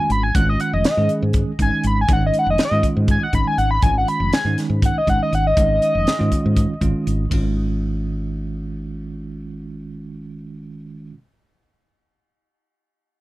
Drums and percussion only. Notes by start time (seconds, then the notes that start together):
0.10 closed hi-hat
0.35 kick, closed hi-hat
0.60 closed hi-hat
0.84 snare, closed hi-hat
1.09 closed hi-hat
1.33 kick, closed hi-hat
1.59 kick, closed hi-hat
1.84 closed hi-hat
2.08 kick, closed hi-hat
2.34 closed hi-hat
2.58 snare, closed hi-hat
2.83 kick, closed hi-hat
3.08 kick, closed hi-hat
3.33 kick, closed hi-hat
3.58 closed hi-hat
3.82 kick, closed hi-hat
4.08 closed hi-hat
4.33 snare, closed hi-hat
4.58 snare, closed hi-hat
4.82 kick, closed hi-hat
5.07 kick, closed hi-hat
5.33 closed hi-hat
5.57 kick, closed hi-hat
5.82 closed hi-hat
6.07 snare, closed hi-hat
6.32 kick, closed hi-hat
6.57 kick, closed hi-hat
6.81 kick, closed hi-hat
7.07 closed hi-hat
7.31 kick, ride